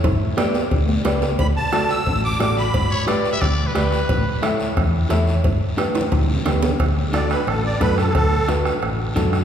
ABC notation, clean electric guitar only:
X:1
M:4/4
L:1/8
Q:1/4=178
K:D
V:1 name="Clean electric guitar"
z2 [GBd] z3 [GBd] z | z2 [FAd] z3 [FAd] z | z2 [GBd] z3 [GBd] z | z2 [EAc] z3 [EAc] z |
z2 [DGB] z3 [DGB] z | z2 [DFA] z3 [DFA] z | z2 [DFB] z3 [DFA] z |]